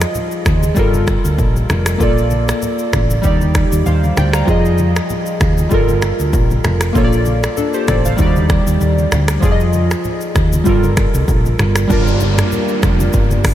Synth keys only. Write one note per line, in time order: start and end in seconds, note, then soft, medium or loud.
0.00 0.73 F3 medium
0.00 0.74 F4 medium
0.00 0.75 G#4 medium
0.00 0.76 D#5 medium
0.74 1.97 G3 medium
0.74 1.98 F4 medium
0.74 1.98 A4 medium
0.79 1.99 A#4 medium
1.98 3.20 A#3 medium
1.98 3.21 F4 medium
1.98 3.22 A4 medium
2.03 3.23 D5 medium
3.22 4.44 G3 medium
3.22 4.45 D#4 medium
3.22 4.46 G4 medium
3.27 3.56 D5 medium
3.86 4.16 C5 medium
3.86 4.15 F5 medium
4.17 4.33 D5 medium
4.17 4.33 G5 medium
4.34 4.64 F5 medium
4.34 4.63 A#5 medium
4.45 5.68 F3 medium
4.45 5.69 F4 medium
4.45 5.70 G#4 medium
4.50 5.70 D#5 medium
5.69 6.92 G3 medium
5.69 6.92 F4 medium
5.69 6.93 A4 medium
5.74 6.94 A#4 medium
6.93 8.15 A#3 medium
6.93 7.56 F4 medium
6.93 7.56 A4 medium
6.98 7.04 C#5 medium
7.04 7.61 D5 medium
7.57 7.74 D4 medium
7.57 7.73 A4 medium
7.74 7.88 G4 medium
7.74 7.87 C5 medium
7.88 8.05 A4 medium
7.88 8.04 D5 medium
8.05 8.35 C5 medium
8.05 8.35 F5 medium
8.17 9.39 G3 medium
8.17 9.40 D#4 medium
8.17 8.27 F#4 medium
8.22 9.42 D5 medium
8.26 9.44 G4 medium
9.40 10.63 F3 medium
9.40 10.63 F4 medium
9.40 10.64 G#4 medium
9.45 9.51 D5 medium
9.52 10.69 D#5 medium
10.64 11.86 G3 medium
10.64 11.87 F4 medium
10.64 11.88 A4 medium
10.69 11.89 A#4 medium
11.88 13.54 G3 medium
11.88 13.54 D4 medium
11.88 13.54 F4 medium
11.93 13.54 A#4 medium